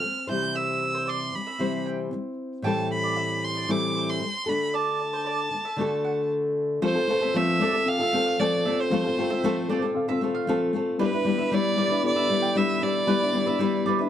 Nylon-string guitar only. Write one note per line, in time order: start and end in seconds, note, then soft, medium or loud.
0.00 0.23 F3 soft
0.00 0.29 C4 medium
0.04 0.24 A3 medium
0.27 1.34 E3 soft
0.27 1.35 G3 soft
0.27 1.59 C4 soft
0.27 1.60 E4 soft
0.27 1.60 C5 medium
0.32 1.31 C3 soft
1.33 1.54 C3 soft
1.33 1.55 E3 soft
1.33 1.55 G3 soft
1.59 2.10 C3 medium
1.59 2.12 E3 medium
1.59 2.13 G3 medium
1.59 2.65 C4 medium
1.59 2.66 E4 medium
1.59 2.66 C5 medium
2.11 2.33 C3 soft
2.11 2.33 E3 medium
2.11 2.34 G3 medium
2.62 3.67 A2 medium
2.62 3.67 E3 medium
2.62 3.68 G3 medium
2.62 3.68 C4 medium
2.62 3.69 E4 medium
2.67 3.70 A4 medium
3.68 4.19 A2 medium
3.68 4.20 E3 medium
3.68 4.21 G3 medium
3.68 4.22 C4 medium
3.68 4.22 E4 medium
3.68 4.26 A4 medium
4.20 4.42 A2 soft
4.20 4.42 E3 soft
4.20 4.43 G3 medium
4.46 5.53 A3 soft
4.46 5.53 D4 soft
4.46 5.52 F#4 soft
4.46 5.81 A4 medium
4.50 5.50 D3 soft
5.51 5.72 D3 soft
5.51 5.74 A3 soft
5.76 6.81 D3 medium
5.76 6.82 A3 medium
5.76 6.82 D4 medium
5.76 6.83 F#4 medium
5.81 6.83 A4 medium
6.82 6.95 F3 medium
6.82 6.95 A3 medium
6.82 6.96 C4 medium
6.82 6.95 F4 medium
6.82 6.94 A4 medium
6.95 7.08 C4 soft
6.95 7.09 F4 medium
6.95 7.08 A4 soft
7.08 7.21 A3 medium
7.08 7.22 C4 medium
7.08 7.21 F4 medium
7.08 7.20 A4 medium
7.21 7.34 C4 soft
7.21 7.34 F4 soft
7.21 7.35 A4 medium
7.34 7.61 F3 medium
7.34 7.59 A3 medium
7.34 7.60 C4 medium
7.34 7.61 F4 medium
7.34 7.62 A4 medium
7.60 7.73 A3 medium
7.60 7.74 C4 medium
7.60 7.73 F4 medium
7.60 7.72 A4 medium
7.73 8.01 C4 soft
7.73 8.00 F4 soft
7.73 7.98 A4 medium
7.99 8.13 C4 soft
7.99 8.14 F4 soft
7.99 8.13 A4 soft
8.13 8.39 A3 medium
8.13 8.39 C4 medium
8.13 8.40 F4 medium
8.13 8.40 A4 medium
8.39 8.65 F3 medium
8.39 8.64 A3 medium
8.39 8.65 C4 medium
8.39 8.66 F4 medium
8.39 8.66 A4 medium
8.65 8.91 A3 medium
8.65 8.91 C4 medium
8.65 8.92 F4 medium
8.65 8.92 A4 medium
8.91 9.04 F3 medium
8.91 9.05 A3 medium
8.91 9.05 C4 medium
8.91 9.04 F4 medium
8.91 9.03 A4 medium
9.04 9.17 C4 soft
9.04 9.18 F4 medium
9.04 9.17 A4 soft
9.17 9.30 A3 medium
9.17 9.31 C4 medium
9.17 9.30 F4 medium
9.17 9.29 A4 medium
9.30 9.43 C4 soft
9.30 9.44 F4 soft
9.30 9.43 A4 soft
9.43 9.69 F3 medium
9.43 9.68 A3 medium
9.43 9.69 C4 medium
9.43 9.70 F4 medium
9.43 9.70 A4 medium
9.69 9.82 A3 medium
9.69 9.83 C4 medium
9.69 9.82 F4 medium
9.69 9.81 A4 medium
9.82 10.10 C4 medium
9.82 10.09 F4 medium
9.82 10.07 A4 medium
10.08 10.21 C4 soft
10.08 10.22 F4 medium
10.08 10.21 A4 soft
10.21 10.47 A3 medium
10.21 10.47 C4 medium
10.21 10.48 F4 medium
10.21 10.48 A4 medium
10.47 10.73 F3 medium
10.47 10.72 A3 medium
10.47 10.73 C4 medium
10.47 10.74 F4 medium
10.47 10.74 A4 medium
10.73 10.99 A3 medium
10.73 11.00 C4 medium
10.73 11.00 F4 medium
10.73 11.01 A4 medium
10.99 11.12 G3 medium
10.99 11.13 D4 medium
10.99 11.12 E4 medium
10.99 11.11 B4 medium
11.12 11.25 D4 soft
11.12 11.26 E4 medium
11.12 11.25 B4 medium
11.25 11.38 G3 medium
11.25 11.39 D4 medium
11.25 11.39 E4 medium
11.25 11.37 B4 medium
11.38 11.51 D4 soft
11.38 11.52 E4 soft
11.38 11.52 B4 medium
11.51 11.75 G3 medium
11.51 11.76 D4 medium
11.51 11.77 E4 medium
11.51 11.78 B4 medium
11.76 11.90 G3 medium
11.76 11.91 D4 medium
11.76 11.90 E4 medium
11.76 11.88 B4 medium
11.90 12.18 D4 soft
11.90 12.16 E4 soft
11.90 12.14 B4 medium
12.16 12.29 D4 soft
12.16 12.29 E4 soft
12.16 12.29 B4 medium
12.29 12.54 G3 medium
12.29 12.55 D4 medium
12.29 12.55 E4 medium
12.29 12.56 B4 medium
12.55 12.80 G3 medium
12.55 12.81 D4 medium
12.55 12.82 E4 medium
12.55 12.82 B4 medium
12.81 13.06 G3 medium
12.81 13.07 D4 medium
12.81 13.07 E4 medium
12.81 13.08 B4 medium
13.07 13.21 G3 medium
13.07 13.21 D4 medium
13.07 13.21 E4 medium
13.07 13.19 B4 medium
13.21 13.33 D4 soft
13.21 13.34 E4 soft
13.21 13.34 B4 soft
13.33 13.47 G3 medium
13.33 13.47 D4 medium
13.33 13.46 E4 medium
13.33 13.45 B4 medium
13.46 13.59 D4 soft
13.46 13.59 E4 medium
13.46 13.59 B4 medium
13.59 13.84 G3 medium
13.59 13.86 D4 medium
13.59 13.86 E4 loud
13.59 13.87 B4 loud
13.86 13.99 G3 medium
13.86 14.00 D4 medium
13.86 13.99 E4 medium
13.86 13.98 B4 medium
13.99 14.09 D4 medium
13.99 14.09 E4 medium
13.99 14.09 B4 medium